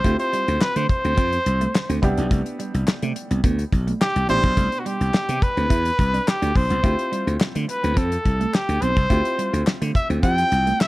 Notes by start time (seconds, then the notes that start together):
Already playing: C5
0.04 D2 A3 C4 E4 F4 G4, kick, closed hi-hat
0.19 C5, closed hi-hat
0.33 G3, closed hi-hat
0.48 D2, muted clean electric guitar stroke, closed hi-hat
0.61 B4, muted slap bass stroke, snare, clap
0.76 D3 A3 C5, closed hi-hat
0.89 C5, muted clean electric guitar stroke, kick, closed hi-hat
1.04 D2 C4, closed hi-hat
1.18 F2 C4, kick, closed hi-hat
1.32 muted clean electric guitar stroke, closed hi-hat
1.46 C2, closed hi-hat
1.61 A3, closed hi-hat
1.75 snare, clap
1.89 D2 C4, closed hi-hat
2.02 C2 B3 D4 E4 G4, kick, closed hi-hat
2.17 B1 D4, closed hi-hat
2.31 C2 A3, kick, closed hi-hat
2.46 closed hi-hat
2.59 G3, closed hi-hat
2.74 C2, muted clean electric guitar stroke, closed hi-hat
2.88 snare, clap
3.02 C3 A3, closed hi-hat
3.16 muted clean electric guitar stroke, closed hi-hat
3.31 C2 B3, closed hi-hat
3.44 D2 B3, kick, closed hi-hat
3.59 muted clean electric guitar stroke, closed hi-hat
3.73 B1, kick, closed hi-hat
3.87 A3, closed hi-hat
4.01 G4, snare, clap
4.16 C2, closed hi-hat
4.28 A1 B2 B3 D4 E4 G4 C5, closed hi-hat
4.44 B1, kick, closed hi-hat
4.57 C2 A3, kick, closed hi-hat
4.72 closed hi-hat
4.79 F#4
4.85 G3 G4, closed hi-hat
5.01 C2, muted clean electric guitar stroke, closed hi-hat
5.14 snare, clap
5.29 C3 B3, closed hi-hat
5.42 B4, muted clean electric guitar stroke, kick, closed hi-hat
5.57 D2 C4, closed hi-hat
5.70 E2 E4, kick, closed hi-hat
5.85 muted clean electric guitar stroke, closed hi-hat
5.99 C2, kick, closed hi-hat
6.14 D4, closed hi-hat
6.28 G4, snare, clap
6.42 D2 D4, closed hi-hat
6.55 B1 C5, muted clean electric guitar stroke, kick, open hi-hat
6.70 C2 B3, closed hi-hat
6.83 D2 A3 C4 E4 F4 G4, kick, closed hi-hat
6.99 closed hi-hat
7.12 G3, closed hi-hat
7.27 D2, muted clean electric guitar stroke, closed hi-hat
7.40 snare, clap
7.55 D3 A3, closed hi-hat
7.68 B4, muted clean electric guitar stroke, closed hi-hat
7.83 D2 C4, closed hi-hat
7.97 F2 C4 A4, kick, closed hi-hat
8.12 muted clean electric guitar stroke, closed hi-hat
8.25 C2, kick, closed hi-hat
8.40 A3, closed hi-hat
8.54 G4, snare, clap
8.69 D2, closed hi-hat
8.82 B1 C4 C5, closed hi-hat
8.97 C2, kick, closed hi-hat
9.09 D2 A3 C4 E4 F4 G4, kick, closed hi-hat
9.25 closed hi-hat
9.38 G3, closed hi-hat
9.53 D2, muted clean electric guitar stroke, closed hi-hat
9.67 snare, clap
9.82 D3 A3, closed hi-hat
9.95 E5, muted clean electric guitar stroke, kick, closed hi-hat
10.10 D2 C4, closed hi-hat
10.23 F2 C4 E4 F4 G4 G5, kick, closed hi-hat
10.38 muted clean electric guitar stroke, closed hi-hat
10.52 C2, closed hi-hat
10.67 A3, closed hi-hat
10.80 E5, snare, clap